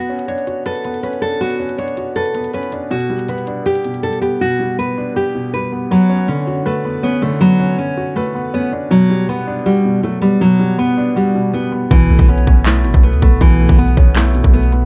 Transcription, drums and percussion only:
0.00 closed hi-hat
0.19 closed hi-hat
0.29 closed hi-hat
0.38 closed hi-hat
0.47 closed hi-hat
0.66 closed hi-hat
0.75 closed hi-hat
0.85 closed hi-hat
0.94 closed hi-hat
1.04 closed hi-hat
1.13 closed hi-hat
1.22 closed hi-hat
1.41 closed hi-hat
1.50 closed hi-hat
1.69 closed hi-hat
1.79 closed hi-hat
1.88 closed hi-hat
1.97 closed hi-hat
2.16 closed hi-hat
2.25 closed hi-hat
2.35 closed hi-hat
2.44 closed hi-hat
2.54 closed hi-hat
2.63 closed hi-hat
2.72 closed hi-hat
2.91 closed hi-hat
3.00 closed hi-hat
3.19 closed hi-hat
3.29 closed hi-hat
3.38 closed hi-hat
3.47 closed hi-hat
3.66 closed hi-hat
3.75 closed hi-hat
3.85 closed hi-hat
3.94 closed hi-hat
4.03 closed hi-hat
4.13 closed hi-hat
4.22 closed hi-hat
11.91 kick, closed hi-hat
12.00 closed hi-hat
12.19 kick, closed hi-hat
12.28 closed hi-hat
12.38 closed hi-hat
12.47 kick, closed hi-hat
12.66 clap, closed hi-hat
12.75 closed hi-hat
12.85 closed hi-hat
12.94 kick, closed hi-hat
13.03 closed hi-hat
13.13 closed hi-hat
13.22 kick, closed hi-hat
13.41 kick, closed hi-hat
13.50 closed hi-hat
13.69 kick, closed hi-hat
13.78 closed hi-hat
13.88 closed hi-hat
13.97 kick, open hi-hat
14.16 clap, closed hi-hat
14.25 closed hi-hat
14.35 closed hi-hat
14.44 kick, closed hi-hat
14.54 closed hi-hat
14.63 closed hi-hat
14.72 closed hi-hat

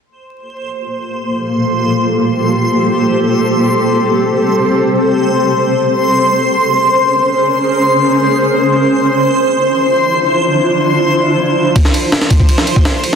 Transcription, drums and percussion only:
11.76 kick, ride
11.85 snare
11.94 ride
12.12 snare, ride
12.21 snare
12.30 kick, ride
12.40 kick
12.49 ride
12.58 snare
12.67 ride
12.76 kick
12.85 snare, ride
13.04 ride

